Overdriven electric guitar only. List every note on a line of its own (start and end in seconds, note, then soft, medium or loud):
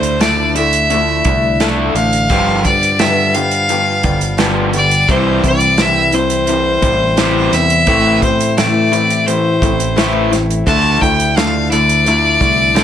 0.00 0.17 D3 medium
0.00 0.17 A3 medium
0.20 0.52 D3 medium
0.20 0.52 A3 medium
0.55 0.86 D3 soft
0.55 0.87 A3 medium
0.90 1.21 D3 medium
0.90 1.22 A3 medium
1.25 1.56 D3 medium
1.25 1.57 A3 medium
1.60 1.93 D3 medium
1.60 1.93 A3 medium
1.60 1.94 D4 medium
1.96 2.27 D3 medium
1.96 2.27 A3 medium
2.30 2.63 G2 medium
2.30 2.63 D3 medium
2.30 2.63 F3 medium
2.65 2.96 G2 medium
2.65 2.96 D3 medium
2.99 3.31 G2 medium
2.99 3.31 D3 medium
3.35 3.66 G2 medium
3.35 3.66 D3 medium
3.70 4.01 G2 medium
3.70 4.01 D3 medium
4.05 4.36 G2 medium
4.05 4.36 D3 medium
4.39 4.72 G2 medium
4.39 4.72 D3 medium
4.39 4.72 F3 medium
4.74 5.06 G2 medium
4.74 5.06 D3 medium
5.09 5.42 C3 medium
5.09 5.42 E3 medium
5.09 5.42 G3 loud
5.44 5.75 C3 medium
5.44 5.76 E3 medium
5.79 6.10 C3 medium
5.79 6.11 E3 medium
6.14 6.45 C3 medium
6.14 6.45 E3 medium
6.49 6.80 C3 medium
6.49 6.80 E3 medium
6.83 7.14 C3 medium
6.83 7.15 E3 medium
7.17 7.50 C3 medium
7.17 7.51 E3 medium
7.17 7.51 G3 medium
7.52 7.84 C3 medium
7.52 7.84 E3 medium
7.87 8.20 A2 medium
7.87 8.21 E3 medium
7.87 8.21 A3 medium
8.23 8.54 A2 medium
8.23 8.54 E3 medium
8.58 8.89 A2 medium
8.58 8.89 E3 medium
8.92 9.23 A2 medium
8.92 9.24 E3 medium
9.27 9.59 A2 medium
9.27 9.59 E3 medium
9.63 9.93 A2 medium
9.63 9.94 E3 medium
9.97 10.29 A2 medium
9.97 10.30 E3 medium
9.97 10.30 A3 medium
10.32 10.63 A2 medium
10.32 10.63 E3 medium
10.67 10.99 D3 medium
10.67 10.99 A3 medium
10.67 11.00 D4 medium
11.02 11.33 D3 medium
11.02 11.33 A3 medium
11.38 11.68 D3 medium
11.38 11.68 A3 medium
11.73 12.03 D3 medium
11.73 12.03 A3 medium
12.08 12.38 D3 medium
12.08 12.38 A3 medium
12.41 12.72 D3 medium
12.41 12.72 A3 medium
12.75 12.84 D3 medium
12.75 12.84 A3 medium
12.75 12.84 D4 medium